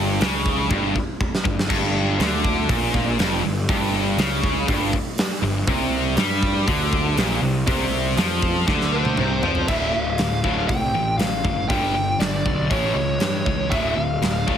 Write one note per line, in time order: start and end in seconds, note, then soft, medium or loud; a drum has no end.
0.00 0.18 G1 medium
0.00 0.20 G2 loud
0.21 0.67 C#2 medium
0.21 0.70 C#3 loud
0.21 snare loud
0.21 open hi-hat medium
0.46 kick medium
0.70 0.94 G1 medium
0.70 0.94 G2 loud
0.70 kick loud
0.96 kick medium
1.21 kick medium
1.35 snare medium
1.44 1.68 G1 medium
1.44 1.65 G2 medium
1.44 kick loud
1.59 snare medium
1.70 2.16 G1 medium
1.70 2.19 G2 medium
1.70 kick loud
1.70 crash loud
2.19 2.66 D2 loud
2.19 2.68 D3 loud
2.19 snare loud
2.19 open hi-hat medium
2.44 kick medium
2.69 3.16 A#1 medium
2.69 3.18 A#2 loud
2.69 kick loud
2.69 open hi-hat medium
2.94 kick medium
3.19 3.42 F1 loud
3.19 3.43 F2 medium
3.19 snare loud
3.19 open hi-hat medium
3.44 3.68 G1 medium
3.44 3.64 G2 medium
3.69 4.15 G1 medium
3.69 4.18 G2 loud
3.69 kick loud
3.69 open hi-hat medium
4.17 4.64 C#2 medium
4.17 4.68 C#3 loud
4.17 snare loud
4.17 open hi-hat medium
4.44 kick medium
4.68 4.92 G1 medium
4.68 4.92 G2 loud
4.68 kick loud
4.68 open hi-hat medium
4.93 kick medium
5.18 snare loud
5.18 open hi-hat medium
5.42 5.66 G1 medium
5.42 5.63 G2 medium
5.67 6.14 C2 medium
5.67 6.17 C3 loud
5.67 kick loud
5.67 open hi-hat medium
6.17 6.64 G2 medium
6.17 6.67 G3 loud
6.17 snare loud
6.17 open hi-hat medium
6.43 kick medium
6.67 7.14 D2 loud
6.67 7.16 D3 loud
6.67 kick loud
6.67 open hi-hat medium
6.93 kick medium
7.16 7.40 A#1 loud
7.16 7.42 A#2 loud
7.16 snare loud
7.16 open hi-hat medium
7.41 7.65 C2 medium
7.41 7.62 C3 medium
7.67 8.14 C2 medium
7.67 8.16 C3 loud
7.67 kick loud
7.67 open hi-hat medium
8.17 8.64 F2 medium
8.17 8.67 F3 loud
8.17 snare loud
8.17 open hi-hat medium
8.42 kick medium
8.68 9.14 D2 loud
8.68 9.17 D3 loud
8.68 kick loud
8.68 snare medium
8.81 snare medium
8.92 9.68 C5 medium
9.05 high tom medium
9.17 9.41 C2 medium
9.17 9.42 C3 loud
9.17 mid tom medium
9.43 9.66 F2 loud
9.43 9.68 F3 loud
9.43 floor tom medium
9.55 floor tom medium
9.68 9.90 D1 medium
9.68 9.92 D2 medium
9.68 9.92 A2 medium
9.68 9.92 D3 medium
9.68 9.94 E5 medium
9.68 kick loud
9.68 crash medium
9.92 10.16 D1 medium
9.92 10.16 D2 medium
9.92 10.16 A2 medium
9.92 10.64 F5 medium
10.18 10.41 D1 medium
10.18 10.41 D2 medium
10.18 10.41 A2 medium
10.18 snare loud
10.18 open hi-hat soft
10.44 10.66 D1 medium
10.44 10.67 D2 medium
10.44 10.67 A2 medium
10.44 10.68 D3 loud
10.44 kick medium
10.68 10.91 C2 medium
10.68 10.91 D2 medium
10.68 10.92 A2 medium
10.68 11.15 G5 loud
10.68 kick loud
10.68 open hi-hat soft
10.93 11.16 A1 medium
10.93 11.17 D2 medium
10.93 11.17 A2 medium
11.18 11.41 A1 medium
11.18 11.42 D2 medium
11.18 11.42 A2 medium
11.18 11.68 F5 medium
11.18 snare loud
11.18 open hi-hat soft
11.44 11.66 F#1 medium
11.44 11.67 D2 medium
11.44 11.67 A2 medium
11.44 kick medium
11.69 12.14 G1 medium
11.69 11.93 G2 medium
11.69 11.93 D3 medium
11.69 11.94 G3 medium
11.69 12.21 G5 loud
11.69 kick loud
11.69 open hi-hat soft
11.95 12.17 G2 medium
11.95 12.17 D3 medium
12.19 12.42 G1 medium
12.19 12.42 G2 medium
12.19 12.43 D3 medium
12.19 12.70 D5 medium
12.19 snare loud
12.19 open hi-hat soft
12.45 12.68 B1 medium
12.45 12.68 G2 medium
12.45 12.68 D3 medium
12.45 kick medium
12.70 12.93 A1 medium
12.70 12.94 A2 medium
12.70 12.94 E3 medium
12.70 12.95 A3 medium
12.70 12.94 C#5 medium
12.70 kick loud
12.70 open hi-hat soft
12.94 13.17 C#2 medium
12.94 13.18 A2 medium
12.94 13.18 E3 medium
12.94 13.70 C#5 medium
13.20 13.43 G2 medium
13.20 13.44 A2 medium
13.20 13.44 E3 medium
13.20 snare loud
13.20 open hi-hat soft
13.46 13.68 C#2 medium
13.46 13.69 A2 medium
13.46 13.69 E3 medium
13.46 kick medium
13.71 13.94 D1 medium
13.71 13.95 D2 medium
13.71 13.96 A2 medium
13.71 13.96 D3 medium
13.71 13.97 E5 medium
13.71 kick loud
13.71 open hi-hat soft
13.95 14.18 D1 medium
13.95 14.20 D2 medium
13.95 14.20 A2 medium
13.95 14.58 F5 medium
14.21 14.43 D1 medium
14.21 14.45 D2 medium
14.21 14.45 A2 medium
14.21 snare loud
14.21 open hi-hat soft
14.47 14.58 D1 medium
14.47 14.58 D2 medium
14.47 14.58 A2 medium
14.47 14.58 D3 medium
14.47 kick medium